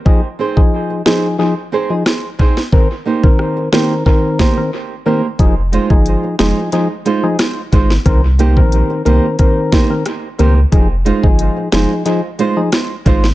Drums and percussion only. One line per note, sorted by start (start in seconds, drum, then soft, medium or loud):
0.06 kick loud
0.57 kick medium
1.06 snare loud
2.06 cross-stick medium
2.06 snare loud
2.39 kick medium
2.57 snare medium
2.72 kick loud
3.24 kick medium
3.39 cross-stick medium
3.73 snare loud
4.06 kick medium
4.39 kick medium
4.39 snare loud
5.39 kick loud
5.39 closed hi-hat medium
5.73 closed hi-hat medium
5.90 kick medium
6.06 closed hi-hat medium
6.39 snare loud
6.39 closed hi-hat soft
6.72 closed hi-hat medium
7.06 closed hi-hat soft
7.39 cross-stick medium
7.39 snare loud
7.39 closed hi-hat medium
7.72 kick loud
7.72 closed hi-hat soft
7.90 snare medium
8.06 kick loud
8.06 closed hi-hat medium
8.39 closed hi-hat soft
8.57 kick medium
8.72 closed hi-hat medium
9.06 closed hi-hat medium
9.39 kick medium
9.39 closed hi-hat medium
9.72 kick medium
9.72 snare loud
9.72 closed hi-hat soft
10.06 cross-stick medium
10.06 closed hi-hat medium
10.39 closed hi-hat soft
10.72 kick loud
10.72 closed hi-hat medium
11.06 closed hi-hat medium
11.24 kick medium
11.39 closed hi-hat medium
11.72 snare loud
11.72 closed hi-hat medium
12.06 closed hi-hat medium
12.39 closed hi-hat soft
12.72 cross-stick medium
12.72 snare loud
12.72 closed hi-hat medium
13.06 kick medium
13.06 closed hi-hat soft
13.24 snare medium